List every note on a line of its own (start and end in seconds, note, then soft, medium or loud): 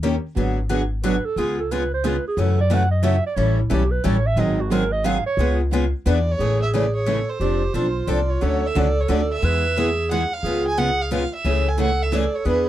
0.00 0.16 D#2 medium
0.00 0.14 D#3 medium
0.00 0.14 A#3 medium
0.00 0.14 C#4 loud
0.00 0.15 G4 loud
0.04 0.15 A#4 medium
0.36 1.17 G#1 medium
0.36 0.58 D3 medium
0.36 0.58 F#3 medium
0.36 0.58 B3 medium
0.36 0.58 F#4 medium
0.36 0.58 G#4 medium
0.69 0.81 D3 medium
0.69 0.81 F#3 medium
0.69 0.81 B3 loud
0.69 0.81 F#4 medium
0.69 0.81 G#4 loud
1.03 1.15 D3 loud
1.03 1.15 F#3 medium
1.03 1.15 B3 medium
1.03 1.15 F#4 loud
1.03 1.15 G#4 loud
1.03 1.26 B4 medium
1.25 1.40 A4 loud
1.36 2.17 C#2 medium
1.36 1.58 C#3 medium
1.36 1.58 G#3 medium
1.36 1.59 B3 medium
1.36 1.59 F4 medium
1.36 1.59 G#4 medium
1.60 1.73 A4 medium
1.71 1.82 C#3 medium
1.71 1.82 G#3 medium
1.71 1.82 B3 medium
1.71 1.83 F4 medium
1.71 1.82 G#4 loud
1.71 1.92 B4 medium
1.93 2.09 C5 loud
2.04 2.15 C#3 loud
2.04 2.15 G#3 medium
2.04 2.15 B3 medium
2.04 2.16 F4 loud
2.04 2.16 G#4 medium
2.04 2.27 B4 medium
2.28 2.42 G#4 medium
2.37 3.18 F#2 medium
2.37 2.58 C#3 medium
2.37 2.59 E3 medium
2.37 2.58 F#3 medium
2.37 2.59 A3 medium
2.37 2.59 C#4 medium
2.37 2.58 E4 medium
2.37 2.59 F#4 medium
2.37 2.59 A4 medium
2.41 2.60 A4 medium
2.61 2.75 D5 loud
2.70 2.82 C#3 medium
2.70 2.82 E3 medium
2.70 2.82 F#3 loud
2.70 2.82 A3 medium
2.70 2.82 C#4 medium
2.70 2.82 E4 medium
2.70 2.82 F#4 loud
2.70 2.82 A4 loud
2.74 2.91 F#5 loud
2.91 3.05 D#5 medium
3.02 3.15 C#3 loud
3.02 3.15 E3 loud
3.02 3.15 F#3 loud
3.02 3.15 A3 loud
3.02 3.15 C#4 loud
3.02 3.15 E4 loud
3.02 3.15 F#4 loud
3.02 3.15 A4 loud
3.02 3.25 E5 loud
3.26 3.38 D5 loud
3.36 3.64 A1 medium
3.36 3.59 E3 medium
3.36 3.59 G3 medium
3.36 3.59 C#4 medium
3.36 3.59 E4 medium
3.36 3.59 A4 medium
3.36 3.58 C#5 medium
3.60 3.74 E4 medium
3.70 4.00 B1 medium
3.70 3.82 E3 medium
3.70 3.82 G3 medium
3.70 3.82 C#4 medium
3.70 3.82 E4 loud
3.70 3.93 G4 medium
3.70 3.83 A4 medium
3.91 4.06 B4 medium
4.04 4.33 A1 medium
4.04 4.16 E3 medium
4.04 4.16 G3 medium
4.04 4.16 C#4 loud
4.04 4.16 E4 loud
4.04 4.16 A4 loud
4.04 4.28 C#5 medium
4.26 4.41 E5 loud
4.36 5.18 G#1 medium
4.36 4.59 D#3 medium
4.36 4.59 F#3 medium
4.36 4.59 C4 medium
4.36 4.59 D#4 medium
4.36 4.59 G#4 medium
4.36 4.62 D#5 loud
4.61 4.73 F#4 medium
4.71 4.83 D#3 medium
4.71 4.83 F#3 loud
4.71 4.83 C4 loud
4.71 4.83 D#4 medium
4.71 4.83 G#4 loud
4.71 4.94 A#4 loud
4.92 5.07 D#5 loud
5.04 5.16 D#3 loud
5.04 5.16 F#3 loud
5.04 5.17 C4 medium
5.04 5.17 D#4 loud
5.04 5.17 G#4 loud
5.04 5.26 F5 loud
5.26 5.57 C#5 loud
5.37 5.92 C#2 loud
5.37 5.60 C#3 medium
5.37 5.60 G#3 medium
5.37 5.61 B3 medium
5.37 5.61 F4 medium
5.37 5.61 G#4 medium
5.73 5.84 C#3 medium
5.73 5.84 G#3 loud
5.73 5.84 B3 loud
5.73 5.84 F4 loud
5.73 5.84 G#4 loud
6.06 6.33 E2 loud
6.06 6.17 E3 loud
6.06 6.18 B3 loud
6.06 6.18 D4 loud
6.06 6.18 G#4 loud
6.06 6.18 B4 loud
6.10 6.33 D5 medium
6.32 6.62 C#5 loud
6.39 7.20 A1 medium
6.39 6.61 C#3 medium
6.39 6.61 E3 medium
6.39 6.60 G#3 medium
6.39 6.61 A3 medium
6.39 6.61 C#4 medium
6.39 6.60 E4 medium
6.39 7.10 G#4 medium
6.39 6.62 G#4 medium
6.39 6.60 A4 medium
6.62 6.73 E5 medium
6.73 6.84 C#3 medium
6.73 6.85 E3 medium
6.73 6.85 G#3 medium
6.73 6.85 A3 medium
6.73 6.85 C#4 medium
6.73 6.85 E4 medium
6.73 6.85 G#4 medium
6.73 6.85 A4 loud
6.73 6.94 D5 medium
6.95 7.30 C#5 medium
7.06 7.18 C#3 medium
7.06 7.18 E3 medium
7.06 7.18 G#3 medium
7.06 7.18 A3 loud
7.06 7.18 C#4 loud
7.06 7.19 E4 loud
7.06 7.18 G#4 medium
7.06 7.40 A4 medium
7.06 7.19 A4 medium
7.29 8.12 C5 medium
7.40 7.67 F1 medium
7.40 7.62 F3 medium
7.40 7.62 C4 medium
7.40 7.62 D4 medium
7.40 7.75 G4 loud
7.40 7.62 A4 medium
7.74 8.03 B1 medium
7.74 7.85 F3 medium
7.74 7.86 C4 medium
7.74 7.86 D4 medium
7.74 8.44 F4 medium
7.74 7.86 A4 medium
8.07 8.36 C2 medium
8.07 8.19 F3 medium
8.07 8.19 C4 medium
8.07 8.19 D4 loud
8.07 8.19 A4 loud
8.07 8.31 D5 medium
8.30 8.68 C#5 medium
8.41 8.69 D2 medium
8.41 8.62 D3 medium
8.41 8.62 F#3 medium
8.41 8.63 A3 medium
8.41 8.63 C#4 medium
8.41 8.63 F#4 medium
8.41 8.63 A4 medium
8.41 9.46 A4 loud
8.66 8.79 E5 medium
8.75 9.04 C#2 medium
8.75 8.86 D3 medium
8.75 8.86 F#3 medium
8.75 8.87 A3 medium
8.75 8.87 C#4 medium
8.75 8.87 F#4 medium
8.75 8.87 A4 loud
8.75 9.02 D5 medium
9.00 9.10 C#5 medium
9.08 9.37 D2 medium
9.08 9.20 D3 loud
9.08 9.20 F#3 medium
9.08 9.20 A3 medium
9.08 9.20 C#4 loud
9.08 9.20 F#4 loud
9.08 9.21 A4 loud
9.08 9.29 D5 medium
9.33 10.07 E5 loud
9.42 10.23 E2 medium
9.42 9.63 E3 medium
9.42 9.63 G#3 medium
9.42 9.64 B3 medium
9.42 9.64 E4 medium
9.42 9.64 G#4 medium
9.42 9.80 B4 loud
9.76 9.87 E3 medium
9.76 9.88 G#3 medium
9.76 9.88 B3 medium
9.76 9.88 E4 medium
9.76 9.88 G#4 medium
9.76 10.32 G#4 loud
10.11 10.22 E3 medium
10.11 10.22 G#3 medium
10.11 10.22 B3 medium
10.11 10.22 E4 loud
10.11 10.22 G#4 loud
10.11 10.35 F#5 medium
10.33 10.66 F5 medium
10.43 11.24 C#2 medium
10.43 10.65 C#3 medium
10.43 10.66 G#3 medium
10.43 10.66 B3 medium
10.43 10.66 F4 medium
10.43 11.16 G#4 loud
10.43 10.66 G#4 medium
10.67 10.79 G#5 loud
10.77 10.89 C#3 medium
10.77 10.88 G#3 medium
10.77 10.89 B3 medium
10.77 10.89 F4 medium
10.77 10.89 G#4 medium
10.77 11.03 F#5 loud
11.02 11.13 F5 medium
11.11 11.22 C#3 loud
11.11 11.23 G#3 loud
11.11 11.23 B3 medium
11.11 11.23 F4 medium
11.11 11.23 G#4 loud
11.11 11.32 F5 medium
11.35 11.70 E5 medium
11.44 12.26 C#2 medium
11.44 11.66 C#3 medium
11.44 11.66 E3 medium
11.44 11.66 A3 medium
11.44 11.66 C#4 medium
11.44 11.66 E4 medium
11.44 11.66 G#4 medium
11.44 12.46 A4 loud
11.68 11.80 G#5 medium
11.78 11.89 C#3 medium
11.78 11.89 E3 medium
11.78 11.90 A3 medium
11.78 11.90 C#4 medium
11.78 11.90 E4 medium
11.78 11.90 G#4 medium
11.78 12.04 F#5 loud
12.02 12.16 E5 medium
12.12 12.23 C#3 medium
12.12 12.23 E3 loud
12.12 12.24 A3 loud
12.12 12.24 C#4 medium
12.12 12.23 E4 medium
12.12 12.24 G#4 loud
12.12 12.36 D5 medium
12.35 12.47 C#5 medium
12.45 12.69 E2 medium
12.45 12.66 E3 medium
12.45 12.67 B3 medium
12.45 12.67 D4 medium
12.45 12.69 G#4 loud
12.45 12.67 G#4 medium
12.45 12.68 B4 medium
12.45 12.67 B4 loud